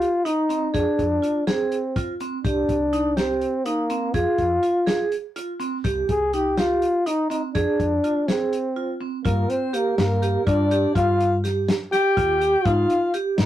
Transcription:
0.00 0.27 F4 medium
0.00 closed hi-hat soft
0.25 0.39 D#4 medium
0.25 0.76 D#4 medium
0.25 closed hi-hat medium
0.49 0.63 C4 medium
0.49 closed hi-hat medium
0.74 0.84 F2 medium
0.74 1.47 D4 medium
0.74 1.01 G#4 medium
0.74 kick loud
0.74 closed hi-hat medium
0.99 1.18 F2 medium
0.99 kick medium
0.99 closed hi-hat soft
1.23 1.36 F4 medium
1.23 closed hi-hat medium
1.47 2.16 C4 medium
1.47 1.74 G#4 medium
1.47 snare loud
1.47 closed hi-hat medium
1.72 closed hi-hat medium
1.96 2.10 F4 medium
1.96 kick medium
1.96 closed hi-hat medium
2.20 2.34 C4 medium
2.20 closed hi-hat medium
2.44 2.63 C2 medium
2.44 3.19 D4 medium
2.44 2.72 G4 medium
2.44 kick loud
2.44 closed hi-hat medium
2.69 3.43 C2 medium
2.69 kick medium
2.69 closed hi-hat medium
2.93 3.07 D#4 medium
2.93 closed hi-hat medium
3.17 3.67 C4 medium
3.17 3.44 G4 medium
3.17 snare medium
3.17 closed hi-hat medium
3.41 closed hi-hat medium
3.65 4.15 A#3 medium
3.65 3.80 D#4 medium
3.65 closed hi-hat medium
3.90 4.04 C4 medium
3.90 closed hi-hat medium
4.14 4.24 F2 medium
4.14 5.12 F4 medium
4.14 4.41 G#4 medium
4.14 kick loud
4.14 closed hi-hat medium
4.38 4.57 F2 medium
4.38 kick medium
4.38 closed hi-hat soft
4.63 4.77 F4 medium
4.63 closed hi-hat soft
4.87 5.14 G#4 medium
4.87 snare loud
4.87 closed hi-hat medium
5.12 closed hi-hat medium
5.36 5.50 F4 medium
5.36 closed hi-hat medium
5.60 5.74 C4 medium
5.60 closed hi-hat medium
5.84 6.03 C2 medium
5.84 6.11 G4 medium
5.84 kick loud
5.84 closed hi-hat medium
6.09 6.83 C2 medium
6.09 6.36 G#4 medium
6.09 kick medium
6.09 closed hi-hat medium
6.33 6.47 D#4 medium
6.33 6.60 G4 medium
6.33 closed hi-hat medium
6.57 7.08 F4 medium
6.57 6.85 G4 medium
6.57 snare medium
6.57 closed hi-hat medium
6.82 closed hi-hat medium
7.06 7.20 D#4 medium
7.06 7.30 D#4 medium
7.06 closed hi-hat medium
7.30 7.44 C4 medium
7.30 7.42 D#4 medium
7.30 closed hi-hat medium
7.54 7.65 F2 medium
7.54 8.29 D4 medium
7.54 7.82 G#4 medium
7.54 kick medium
7.54 closed hi-hat medium
7.80 7.98 F2 medium
7.80 kick medium
7.80 closed hi-hat medium
8.04 8.17 F4 medium
8.04 closed hi-hat medium
8.27 9.01 C4 medium
8.27 8.55 G#4 medium
8.27 snare medium
8.27 closed hi-hat medium
8.53 closed hi-hat medium
8.76 8.90 F4 medium
9.01 9.14 C4 medium
9.24 9.44 G2 medium
9.24 9.51 A#3 medium
9.24 9.52 F4 medium
9.24 9.51 A#4 medium
9.24 kick loud
9.24 closed hi-hat medium
9.49 9.76 C4 medium
9.49 9.76 C5 medium
9.49 closed hi-hat medium
9.73 9.97 A#3 medium
9.73 10.01 G4 medium
9.73 9.97 A#4 medium
9.73 closed hi-hat medium
9.97 10.35 G2 medium
9.97 10.43 A#3 medium
9.97 10.43 A#4 medium
9.97 snare medium
9.97 closed hi-hat medium
10.22 10.36 G4 medium
10.22 closed hi-hat medium
10.46 10.84 G2 medium
10.46 10.92 D4 medium
10.46 10.60 F4 medium
10.46 10.92 D5 medium
10.46 kick loud
10.46 closed hi-hat medium
10.71 10.85 G4 medium
10.71 closed hi-hat medium
10.95 11.70 G2 medium
10.95 11.40 F4 loud
10.95 11.22 F4 medium
10.95 11.41 F5 medium
10.95 kick loud
10.95 closed hi-hat medium
11.20 closed hi-hat medium
11.44 11.71 G4 medium
11.44 snare soft
11.44 closed hi-hat medium
11.68 snare loud
11.68 closed hi-hat medium
11.91 12.66 G4 loud
11.91 12.06 G4 medium
11.91 12.67 G5 medium
11.91 snare soft
11.91 closed hi-hat medium
12.17 12.54 D#2 medium
12.17 12.31 F4 medium
12.17 kick medium
12.17 closed hi-hat medium
12.41 12.55 G4 medium
12.41 closed hi-hat medium
12.65 12.84 G#2 medium
12.65 12.93 D#4 medium
12.65 13.14 F4 medium
12.65 13.14 F5 medium
12.65 kick loud
12.65 closed hi-hat medium
12.90 closed hi-hat medium
13.14 13.41 G4 medium
13.14 closed hi-hat medium
13.38 13.46 G#2 medium
13.38 13.46 D#4 medium
13.38 13.46 D#5 medium
13.38 snare loud
13.38 closed hi-hat medium

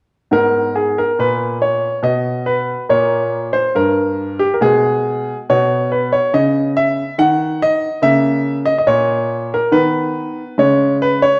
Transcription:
0.31 1.01 G#2 soft
0.31 2.86 B3 soft
0.31 0.76 A#4 medium
0.76 0.97 G#4 soft
0.98 1.19 A#4 medium
1.19 1.87 A#2 soft
1.19 1.56 B4 medium
1.62 1.98 C#5 medium
2.03 2.72 B2 soft
2.03 2.47 D#5 medium
2.46 2.83 B4 medium
2.89 3.58 A#2 soft
2.89 4.56 A#3 soft
2.89 3.54 C#5 medium
3.53 3.75 C5 medium
3.75 4.44 G2 soft
3.75 4.39 A#4 medium
4.39 4.54 G4 medium
4.54 4.61 A#4 soft
4.61 5.30 B2 soft
4.61 5.44 G#3 soft
4.61 5.35 G#4 medium
5.49 6.16 B2 soft
5.49 7.99 B3 soft
5.49 5.91 C#5 medium
5.92 6.12 B4 soft
6.13 6.33 C#5 medium
6.34 7.01 C#3 soft
6.34 6.69 D#5 medium
6.77 7.18 E5 medium
7.18 7.86 D#3 soft
7.18 7.61 F#5 medium
7.62 8.03 D#5 medium
8.02 8.70 C#3 soft
8.02 9.69 A#3 soft
8.02 8.57 E5 medium
8.65 8.77 D#5 medium
8.78 8.86 D#5 medium
8.87 9.56 A#2 soft
8.87 9.52 C#5 medium
9.54 9.74 A#4 medium
9.72 10.41 D#3 soft
9.72 10.54 B3 soft
9.72 10.58 B4 medium
10.58 11.26 C#3 soft
10.58 11.40 G#3 soft
10.58 10.95 C#5 medium
11.02 11.23 B4 medium
11.22 11.40 C#5 medium

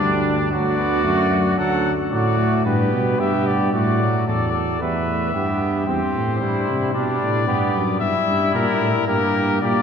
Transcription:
0.00 0.51 D2 medium
0.00 0.50 G3 medium
0.00 0.49 D4 medium
0.00 0.49 D5 medium
0.51 1.04 D2 medium
0.51 0.77 F#3 medium
0.51 1.60 F#4 medium
0.51 1.56 D5 medium
0.77 1.06 B3 medium
1.05 1.57 F#2 medium
1.05 1.30 A3 medium
1.31 1.43 A3 medium
1.57 1.92 D2 medium
1.57 1.92 F#3 medium
1.57 1.93 A4 medium
1.57 1.92 F#5 medium
2.11 2.62 A2 medium
2.11 2.36 F#3 medium
2.11 2.62 F#4 medium
2.11 2.62 D5 medium
2.38 2.67 A3 medium
2.65 2.92 G2 medium
2.65 3.73 B3 medium
2.65 3.18 G4 medium
2.65 3.21 B4 medium
2.93 3.19 B2 medium
3.18 3.72 G2 medium
3.18 3.72 G4 medium
3.18 3.48 E5 medium
3.46 3.73 D5 medium
3.72 4.24 A2 medium
3.72 4.02 A3 medium
3.72 4.23 F#4 medium
3.72 4.24 D5 medium
4.01 4.81 F#3 medium
4.26 4.80 E2 medium
4.26 4.52 A4 medium
4.26 4.80 D5 medium
4.52 4.79 A4 medium
4.80 5.33 E2 medium
4.80 4.93 G3 medium
4.80 5.33 B4 medium
4.80 5.86 E5 medium
5.08 5.33 A3 medium
5.34 5.87 G2 medium
5.34 5.86 B3 medium
5.34 5.86 G4 medium
5.87 6.00 E2 medium
5.87 6.39 C4 medium
5.87 6.39 G4 medium
5.87 6.93 C5 medium
6.15 6.43 A2 medium
6.40 6.70 G2 medium
6.40 6.92 G3 medium
6.40 6.93 E4 medium
6.69 6.95 C3 medium
6.94 7.21 B2 medium
6.94 7.46 G3 medium
6.94 7.46 D4 medium
6.94 7.98 D5 medium
7.22 7.47 A2 medium
7.47 7.73 G2 medium
7.47 7.99 B3 medium
7.47 7.84 G4 medium
7.75 8.00 F#2 medium
8.00 8.13 G2 medium
8.00 9.05 G3 medium
8.00 9.05 E4 medium
8.00 8.53 E5 medium
8.28 8.54 G2 medium
8.54 8.66 A#2 medium
8.54 9.06 A#4 loud
8.81 8.93 A2 medium
9.07 9.61 G2 medium
9.07 9.61 A#3 medium
9.07 9.61 G4 medium
9.07 9.61 A#4 medium
9.61 9.82 A#2 medium
9.61 9.82 A#3 medium
9.61 9.82 G4 medium
9.61 9.82 D5 medium

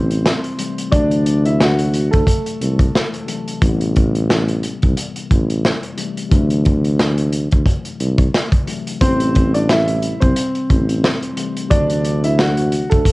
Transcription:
0.00 0.33 A1 medium
0.00 0.54 C3 medium
0.00 0.55 E3 medium
0.00 0.56 G3 medium
0.00 0.57 C4 medium
0.00 0.88 C4 medium
0.00 0.88 C5 medium
0.11 closed hi-hat medium
0.26 snare loud
0.44 closed hi-hat soft
0.58 0.89 C3 medium
0.58 0.91 E3 medium
0.58 0.93 G3 medium
0.58 0.93 A3 medium
0.58 closed hi-hat medium
0.78 closed hi-hat medium
0.90 2.08 D2 loud
0.90 3.23 C3 medium
0.90 3.24 E3 medium
0.90 3.25 F#3 medium
0.90 1.42 D4 medium
0.90 1.41 D5 loud
0.90 kick loud
0.90 closed hi-hat medium
0.96 3.26 A3 medium
1.11 closed hi-hat medium
1.26 closed hi-hat medium
1.45 1.59 E4 medium
1.45 1.59 E5 medium
1.45 closed hi-hat medium
1.60 2.10 F#4 medium
1.60 2.10 F#5 medium
1.60 snare loud
1.79 closed hi-hat medium
1.93 closed hi-hat medium
2.11 2.25 D2 medium
2.11 3.58 A3 medium
2.11 3.57 A4 medium
2.11 kick medium
2.11 closed hi-hat soft
2.27 kick medium
2.27 closed hi-hat medium
2.46 closed hi-hat medium
2.61 2.87 C2 loud
2.61 closed hi-hat medium
2.79 kick loud
2.79 closed hi-hat medium
2.95 snare loud
3.14 closed hi-hat medium
3.26 3.60 C3 medium
3.26 3.61 E3 medium
3.26 3.62 F#3 medium
3.26 3.62 A3 medium
3.26 closed hi-hat medium
3.48 closed hi-hat medium
3.62 4.78 A1 loud
3.62 5.94 C3 medium
3.62 5.95 E3 medium
3.62 5.96 G3 medium
3.62 kick loud
3.62 closed hi-hat medium
3.67 5.97 B3 medium
3.81 closed hi-hat medium
3.96 kick medium
3.96 closed hi-hat medium
4.15 closed hi-hat medium
4.30 snare loud
4.48 closed hi-hat medium
4.63 closed hi-hat medium
4.82 4.94 C2 medium
4.82 kick medium
4.82 closed hi-hat soft
4.97 closed hi-hat medium
5.16 closed hi-hat medium
5.31 5.72 A1 medium
5.31 kick medium
5.31 closed hi-hat medium
5.50 closed hi-hat medium
5.65 snare loud
5.83 closed hi-hat medium
5.97 6.28 C3 medium
5.97 6.30 E3 medium
5.97 6.32 G3 medium
5.97 6.33 A3 medium
5.97 closed hi-hat medium
6.17 closed hi-hat medium
6.29 7.48 D2 loud
6.29 8.62 C3 medium
6.29 8.63 E3 medium
6.29 8.64 F#3 medium
6.29 kick loud
6.29 closed hi-hat medium
6.35 8.65 A3 medium
6.50 closed hi-hat medium
6.65 kick medium
6.65 closed hi-hat medium
6.85 closed hi-hat medium
7.00 snare loud
7.18 closed hi-hat medium
7.33 closed hi-hat medium
7.52 7.64 D2 medium
7.52 kick medium
7.52 closed hi-hat soft
7.66 kick medium
7.66 closed hi-hat medium
7.85 closed hi-hat medium
8.00 8.27 C2 loud
8.00 closed hi-hat medium
8.18 kick loud
8.18 closed hi-hat medium
8.35 snare loud
8.52 kick loud
8.52 closed hi-hat medium
8.65 9.00 C3 medium
8.65 9.01 E3 medium
8.65 9.01 F#3 medium
8.65 9.01 A3 medium
8.65 closed hi-hat medium
8.87 closed hi-hat medium
9.01 10.17 A1 loud
9.01 11.33 C3 medium
9.01 11.34 E3 medium
9.01 11.35 G3 medium
9.01 9.51 C4 medium
9.01 9.51 C5 loud
9.01 kick loud
9.01 closed hi-hat medium
9.07 11.36 C4 medium
9.20 closed hi-hat medium
9.35 kick medium
9.35 closed hi-hat medium
9.54 9.68 D4 medium
9.54 9.67 D5 medium
9.54 closed hi-hat medium
9.69 10.19 E4 medium
9.69 10.19 E5 medium
9.69 snare loud
9.88 closed hi-hat medium
10.02 closed hi-hat medium
10.20 10.34 C2 medium
10.20 11.67 C4 medium
10.20 11.66 C5 medium
10.20 kick medium
10.20 closed hi-hat soft
10.36 closed hi-hat medium
10.55 closed hi-hat medium
10.70 11.12 A1 medium
10.70 kick medium
10.70 closed hi-hat medium
10.89 closed hi-hat medium
11.04 snare loud
11.22 closed hi-hat medium
11.36 11.67 C3 medium
11.36 11.69 E3 medium
11.36 11.71 G3 medium
11.36 11.72 A3 medium
11.36 closed hi-hat medium
11.57 closed hi-hat medium
11.68 12.87 D2 loud
11.68 13.12 C3 medium
11.68 13.12 E3 medium
11.68 13.12 F#3 medium
11.68 12.20 D4 medium
11.68 12.20 D5 loud
11.68 kick loud
11.68 closed hi-hat medium
11.74 13.12 A3 medium
11.90 closed hi-hat medium
12.05 closed hi-hat medium
12.24 12.37 E4 medium
12.24 12.37 E5 medium
12.24 closed hi-hat medium
12.39 12.89 F#4 medium
12.39 12.88 F#5 medium
12.39 snare loud
12.57 closed hi-hat medium
12.72 closed hi-hat medium
12.90 13.03 D2 medium
12.90 13.12 A3 medium
12.90 13.12 A4 medium
12.90 kick medium
12.90 closed hi-hat soft
13.05 kick medium
13.05 closed hi-hat medium

